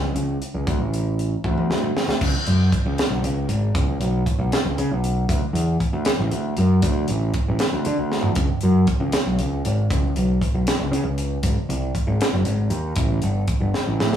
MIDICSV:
0, 0, Header, 1, 3, 480
1, 0, Start_track
1, 0, Tempo, 513259
1, 622, Time_signature, 6, 3, 24, 8
1, 13247, End_track
2, 0, Start_track
2, 0, Title_t, "Picked electric bass"
2, 0, Program_c, 0, 34
2, 0, Note_on_c, 0, 37, 96
2, 109, Note_off_c, 0, 37, 0
2, 137, Note_on_c, 0, 37, 84
2, 345, Note_off_c, 0, 37, 0
2, 508, Note_on_c, 0, 37, 85
2, 609, Note_off_c, 0, 37, 0
2, 624, Note_on_c, 0, 38, 98
2, 727, Note_off_c, 0, 38, 0
2, 736, Note_on_c, 0, 33, 74
2, 1256, Note_off_c, 0, 33, 0
2, 1353, Note_on_c, 0, 38, 89
2, 1557, Note_off_c, 0, 38, 0
2, 1588, Note_on_c, 0, 38, 84
2, 1794, Note_off_c, 0, 38, 0
2, 1945, Note_on_c, 0, 38, 84
2, 2050, Note_off_c, 0, 38, 0
2, 2069, Note_on_c, 0, 37, 87
2, 2172, Note_off_c, 0, 37, 0
2, 2315, Note_on_c, 0, 42, 81
2, 2519, Note_off_c, 0, 42, 0
2, 2671, Note_on_c, 0, 37, 88
2, 2774, Note_off_c, 0, 37, 0
2, 2902, Note_on_c, 0, 35, 80
2, 3009, Note_off_c, 0, 35, 0
2, 3024, Note_on_c, 0, 37, 83
2, 3233, Note_off_c, 0, 37, 0
2, 3259, Note_on_c, 0, 32, 100
2, 3470, Note_off_c, 0, 32, 0
2, 3501, Note_on_c, 0, 37, 94
2, 3712, Note_off_c, 0, 37, 0
2, 3744, Note_on_c, 0, 35, 93
2, 3953, Note_off_c, 0, 35, 0
2, 4102, Note_on_c, 0, 35, 84
2, 4209, Note_off_c, 0, 35, 0
2, 4350, Note_on_c, 0, 37, 94
2, 4454, Note_off_c, 0, 37, 0
2, 4472, Note_on_c, 0, 49, 88
2, 4575, Note_off_c, 0, 49, 0
2, 4595, Note_on_c, 0, 35, 86
2, 4903, Note_off_c, 0, 35, 0
2, 4946, Note_on_c, 0, 38, 88
2, 5052, Note_off_c, 0, 38, 0
2, 5173, Note_on_c, 0, 40, 89
2, 5387, Note_off_c, 0, 40, 0
2, 5546, Note_on_c, 0, 38, 88
2, 5651, Note_off_c, 0, 38, 0
2, 5790, Note_on_c, 0, 33, 85
2, 5893, Note_off_c, 0, 33, 0
2, 5904, Note_on_c, 0, 38, 82
2, 6113, Note_off_c, 0, 38, 0
2, 6154, Note_on_c, 0, 42, 90
2, 6358, Note_off_c, 0, 42, 0
2, 6388, Note_on_c, 0, 38, 90
2, 6595, Note_off_c, 0, 38, 0
2, 6632, Note_on_c, 0, 33, 93
2, 6837, Note_off_c, 0, 33, 0
2, 6999, Note_on_c, 0, 33, 86
2, 7098, Note_off_c, 0, 33, 0
2, 7228, Note_on_c, 0, 38, 85
2, 7332, Note_off_c, 0, 38, 0
2, 7353, Note_on_c, 0, 50, 86
2, 7454, Note_off_c, 0, 50, 0
2, 7468, Note_on_c, 0, 38, 94
2, 7776, Note_off_c, 0, 38, 0
2, 7820, Note_on_c, 0, 37, 86
2, 7926, Note_off_c, 0, 37, 0
2, 8073, Note_on_c, 0, 42, 87
2, 8276, Note_off_c, 0, 42, 0
2, 8417, Note_on_c, 0, 37, 92
2, 8524, Note_off_c, 0, 37, 0
2, 8662, Note_on_c, 0, 35, 86
2, 8766, Note_off_c, 0, 35, 0
2, 8785, Note_on_c, 0, 37, 84
2, 8991, Note_off_c, 0, 37, 0
2, 9026, Note_on_c, 0, 32, 100
2, 9231, Note_off_c, 0, 32, 0
2, 9263, Note_on_c, 0, 37, 93
2, 9469, Note_off_c, 0, 37, 0
2, 9506, Note_on_c, 0, 35, 90
2, 9711, Note_off_c, 0, 35, 0
2, 9861, Note_on_c, 0, 35, 74
2, 9965, Note_off_c, 0, 35, 0
2, 10095, Note_on_c, 0, 37, 84
2, 10201, Note_off_c, 0, 37, 0
2, 10205, Note_on_c, 0, 49, 82
2, 10315, Note_off_c, 0, 49, 0
2, 10323, Note_on_c, 0, 37, 88
2, 10639, Note_off_c, 0, 37, 0
2, 10695, Note_on_c, 0, 32, 84
2, 10801, Note_off_c, 0, 32, 0
2, 10932, Note_on_c, 0, 36, 93
2, 11142, Note_off_c, 0, 36, 0
2, 11289, Note_on_c, 0, 32, 97
2, 11396, Note_off_c, 0, 32, 0
2, 11532, Note_on_c, 0, 30, 91
2, 11638, Note_off_c, 0, 30, 0
2, 11647, Note_on_c, 0, 32, 91
2, 11858, Note_off_c, 0, 32, 0
2, 11878, Note_on_c, 0, 39, 107
2, 12093, Note_off_c, 0, 39, 0
2, 12125, Note_on_c, 0, 33, 91
2, 12337, Note_off_c, 0, 33, 0
2, 12367, Note_on_c, 0, 31, 90
2, 12578, Note_off_c, 0, 31, 0
2, 12723, Note_on_c, 0, 31, 78
2, 12833, Note_off_c, 0, 31, 0
2, 12972, Note_on_c, 0, 33, 84
2, 13078, Note_off_c, 0, 33, 0
2, 13102, Note_on_c, 0, 45, 82
2, 13204, Note_off_c, 0, 45, 0
2, 13215, Note_on_c, 0, 37, 89
2, 13247, Note_off_c, 0, 37, 0
2, 13247, End_track
3, 0, Start_track
3, 0, Title_t, "Drums"
3, 147, Note_on_c, 9, 42, 61
3, 240, Note_off_c, 9, 42, 0
3, 390, Note_on_c, 9, 42, 59
3, 483, Note_off_c, 9, 42, 0
3, 627, Note_on_c, 9, 42, 77
3, 628, Note_on_c, 9, 36, 108
3, 721, Note_off_c, 9, 36, 0
3, 721, Note_off_c, 9, 42, 0
3, 875, Note_on_c, 9, 42, 59
3, 968, Note_off_c, 9, 42, 0
3, 1114, Note_on_c, 9, 42, 56
3, 1208, Note_off_c, 9, 42, 0
3, 1349, Note_on_c, 9, 36, 77
3, 1356, Note_on_c, 9, 48, 62
3, 1442, Note_off_c, 9, 36, 0
3, 1449, Note_off_c, 9, 48, 0
3, 1473, Note_on_c, 9, 48, 50
3, 1567, Note_off_c, 9, 48, 0
3, 1596, Note_on_c, 9, 38, 73
3, 1689, Note_off_c, 9, 38, 0
3, 1707, Note_on_c, 9, 45, 56
3, 1800, Note_off_c, 9, 45, 0
3, 1839, Note_on_c, 9, 38, 84
3, 1932, Note_off_c, 9, 38, 0
3, 1954, Note_on_c, 9, 38, 78
3, 2048, Note_off_c, 9, 38, 0
3, 2069, Note_on_c, 9, 36, 116
3, 2070, Note_on_c, 9, 49, 122
3, 2163, Note_off_c, 9, 36, 0
3, 2164, Note_off_c, 9, 49, 0
3, 2306, Note_on_c, 9, 42, 73
3, 2400, Note_off_c, 9, 42, 0
3, 2548, Note_on_c, 9, 36, 85
3, 2548, Note_on_c, 9, 42, 68
3, 2641, Note_off_c, 9, 36, 0
3, 2642, Note_off_c, 9, 42, 0
3, 2790, Note_on_c, 9, 42, 87
3, 2799, Note_on_c, 9, 38, 118
3, 2883, Note_off_c, 9, 42, 0
3, 2893, Note_off_c, 9, 38, 0
3, 3030, Note_on_c, 9, 42, 78
3, 3124, Note_off_c, 9, 42, 0
3, 3264, Note_on_c, 9, 42, 75
3, 3357, Note_off_c, 9, 42, 0
3, 3506, Note_on_c, 9, 36, 127
3, 3508, Note_on_c, 9, 42, 88
3, 3599, Note_off_c, 9, 36, 0
3, 3601, Note_off_c, 9, 42, 0
3, 3747, Note_on_c, 9, 42, 75
3, 3841, Note_off_c, 9, 42, 0
3, 3987, Note_on_c, 9, 36, 90
3, 3992, Note_on_c, 9, 42, 67
3, 4080, Note_off_c, 9, 36, 0
3, 4085, Note_off_c, 9, 42, 0
3, 4230, Note_on_c, 9, 42, 86
3, 4239, Note_on_c, 9, 38, 108
3, 4323, Note_off_c, 9, 42, 0
3, 4333, Note_off_c, 9, 38, 0
3, 4473, Note_on_c, 9, 42, 73
3, 4566, Note_off_c, 9, 42, 0
3, 4712, Note_on_c, 9, 42, 63
3, 4806, Note_off_c, 9, 42, 0
3, 4948, Note_on_c, 9, 36, 127
3, 4951, Note_on_c, 9, 42, 100
3, 5041, Note_off_c, 9, 36, 0
3, 5045, Note_off_c, 9, 42, 0
3, 5195, Note_on_c, 9, 42, 78
3, 5288, Note_off_c, 9, 42, 0
3, 5427, Note_on_c, 9, 36, 75
3, 5430, Note_on_c, 9, 42, 70
3, 5521, Note_off_c, 9, 36, 0
3, 5523, Note_off_c, 9, 42, 0
3, 5659, Note_on_c, 9, 42, 104
3, 5668, Note_on_c, 9, 38, 119
3, 5752, Note_off_c, 9, 42, 0
3, 5761, Note_off_c, 9, 38, 0
3, 5905, Note_on_c, 9, 42, 80
3, 5999, Note_off_c, 9, 42, 0
3, 6141, Note_on_c, 9, 42, 72
3, 6234, Note_off_c, 9, 42, 0
3, 6381, Note_on_c, 9, 42, 110
3, 6386, Note_on_c, 9, 36, 119
3, 6474, Note_off_c, 9, 42, 0
3, 6479, Note_off_c, 9, 36, 0
3, 6619, Note_on_c, 9, 42, 75
3, 6712, Note_off_c, 9, 42, 0
3, 6861, Note_on_c, 9, 42, 75
3, 6866, Note_on_c, 9, 36, 85
3, 6954, Note_off_c, 9, 42, 0
3, 6960, Note_off_c, 9, 36, 0
3, 7098, Note_on_c, 9, 42, 106
3, 7107, Note_on_c, 9, 38, 118
3, 7191, Note_off_c, 9, 42, 0
3, 7201, Note_off_c, 9, 38, 0
3, 7340, Note_on_c, 9, 42, 75
3, 7434, Note_off_c, 9, 42, 0
3, 7590, Note_on_c, 9, 38, 57
3, 7684, Note_off_c, 9, 38, 0
3, 7694, Note_on_c, 9, 43, 82
3, 7788, Note_off_c, 9, 43, 0
3, 7813, Note_on_c, 9, 42, 101
3, 7822, Note_on_c, 9, 36, 119
3, 7906, Note_off_c, 9, 42, 0
3, 7915, Note_off_c, 9, 36, 0
3, 8049, Note_on_c, 9, 42, 65
3, 8142, Note_off_c, 9, 42, 0
3, 8296, Note_on_c, 9, 42, 72
3, 8301, Note_on_c, 9, 36, 91
3, 8390, Note_off_c, 9, 42, 0
3, 8395, Note_off_c, 9, 36, 0
3, 8533, Note_on_c, 9, 42, 104
3, 8542, Note_on_c, 9, 38, 104
3, 8626, Note_off_c, 9, 42, 0
3, 8636, Note_off_c, 9, 38, 0
3, 8779, Note_on_c, 9, 42, 76
3, 8872, Note_off_c, 9, 42, 0
3, 9024, Note_on_c, 9, 42, 78
3, 9118, Note_off_c, 9, 42, 0
3, 9263, Note_on_c, 9, 36, 127
3, 9266, Note_on_c, 9, 42, 103
3, 9357, Note_off_c, 9, 36, 0
3, 9359, Note_off_c, 9, 42, 0
3, 9502, Note_on_c, 9, 42, 71
3, 9595, Note_off_c, 9, 42, 0
3, 9740, Note_on_c, 9, 36, 81
3, 9748, Note_on_c, 9, 42, 75
3, 9834, Note_off_c, 9, 36, 0
3, 9841, Note_off_c, 9, 42, 0
3, 9978, Note_on_c, 9, 42, 110
3, 9987, Note_on_c, 9, 38, 118
3, 10071, Note_off_c, 9, 42, 0
3, 10081, Note_off_c, 9, 38, 0
3, 10223, Note_on_c, 9, 42, 80
3, 10317, Note_off_c, 9, 42, 0
3, 10455, Note_on_c, 9, 42, 74
3, 10548, Note_off_c, 9, 42, 0
3, 10690, Note_on_c, 9, 42, 107
3, 10694, Note_on_c, 9, 36, 118
3, 10783, Note_off_c, 9, 42, 0
3, 10787, Note_off_c, 9, 36, 0
3, 10941, Note_on_c, 9, 42, 74
3, 11034, Note_off_c, 9, 42, 0
3, 11173, Note_on_c, 9, 36, 73
3, 11178, Note_on_c, 9, 42, 70
3, 11267, Note_off_c, 9, 36, 0
3, 11271, Note_off_c, 9, 42, 0
3, 11416, Note_on_c, 9, 42, 98
3, 11426, Note_on_c, 9, 38, 127
3, 11510, Note_off_c, 9, 42, 0
3, 11519, Note_off_c, 9, 38, 0
3, 11645, Note_on_c, 9, 42, 79
3, 11738, Note_off_c, 9, 42, 0
3, 11880, Note_on_c, 9, 42, 69
3, 11974, Note_off_c, 9, 42, 0
3, 12117, Note_on_c, 9, 42, 105
3, 12125, Note_on_c, 9, 36, 127
3, 12210, Note_off_c, 9, 42, 0
3, 12218, Note_off_c, 9, 36, 0
3, 12360, Note_on_c, 9, 42, 68
3, 12454, Note_off_c, 9, 42, 0
3, 12602, Note_on_c, 9, 42, 66
3, 12606, Note_on_c, 9, 36, 84
3, 12696, Note_off_c, 9, 42, 0
3, 12699, Note_off_c, 9, 36, 0
3, 12852, Note_on_c, 9, 38, 60
3, 12946, Note_off_c, 9, 38, 0
3, 13096, Note_on_c, 9, 38, 87
3, 13190, Note_off_c, 9, 38, 0
3, 13215, Note_on_c, 9, 38, 73
3, 13247, Note_off_c, 9, 38, 0
3, 13247, End_track
0, 0, End_of_file